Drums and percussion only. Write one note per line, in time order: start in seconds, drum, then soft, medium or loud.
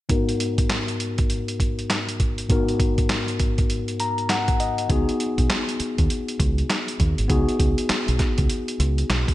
0.09 kick medium
0.09 closed hi-hat medium
0.29 closed hi-hat soft
0.40 closed hi-hat medium
0.58 kick medium
0.58 closed hi-hat medium
0.70 snare loud
0.70 clap medium
0.70 closed hi-hat medium
0.88 closed hi-hat soft
1.00 closed hi-hat medium
1.18 kick medium
1.18 closed hi-hat medium
1.30 closed hi-hat medium
1.48 closed hi-hat soft
1.60 kick medium
1.60 closed hi-hat medium
1.79 closed hi-hat soft
1.90 snare medium
1.90 clap medium
1.90 closed hi-hat medium
2.09 closed hi-hat medium
2.20 kick medium
2.20 closed hi-hat medium
2.38 closed hi-hat soft
2.50 kick loud
2.50 closed hi-hat medium
2.68 closed hi-hat soft
2.80 kick medium
2.80 closed hi-hat medium
2.98 kick medium
2.98 closed hi-hat medium
3.09 snare loud
3.09 clap medium
3.09 closed hi-hat medium
3.28 closed hi-hat soft
3.40 kick medium
3.40 closed hi-hat medium
3.58 kick loud
3.58 closed hi-hat medium
3.70 closed hi-hat medium
3.88 closed hi-hat soft
4.00 closed hi-hat medium
4.18 closed hi-hat soft
4.29 snare medium
4.29 clap medium
4.29 closed hi-hat medium
4.48 kick medium
4.48 closed hi-hat medium
4.60 closed hi-hat medium
4.78 closed hi-hat soft
4.90 kick loud
4.90 closed hi-hat medium
5.09 closed hi-hat soft
5.20 closed hi-hat medium
5.38 kick medium
5.38 closed hi-hat medium
5.50 snare loud
5.50 clap medium
5.50 closed hi-hat medium
5.69 closed hi-hat soft
5.80 closed hi-hat medium
5.98 kick medium
5.98 closed hi-hat medium
6.10 closed hi-hat medium
6.28 closed hi-hat soft
6.40 kick medium
6.40 closed hi-hat medium
6.58 closed hi-hat soft
6.70 snare medium
6.70 clap medium
6.70 closed hi-hat medium
6.88 closed hi-hat soft
7.00 kick medium
7.00 closed hi-hat medium
7.18 closed hi-hat medium
7.30 kick loud
7.30 closed hi-hat medium
7.49 closed hi-hat soft
7.60 kick medium
7.60 closed hi-hat medium
7.78 closed hi-hat medium
7.89 snare loud
7.89 clap medium
7.89 closed hi-hat medium
8.08 closed hi-hat soft
8.19 kick medium
8.19 snare medium
8.19 closed hi-hat medium
8.38 kick medium
8.38 closed hi-hat medium
8.50 closed hi-hat medium
8.68 closed hi-hat medium
8.80 closed hi-hat medium
8.98 closed hi-hat soft
9.10 snare loud
9.10 clap medium
9.10 closed hi-hat medium
9.28 kick medium
9.28 closed hi-hat medium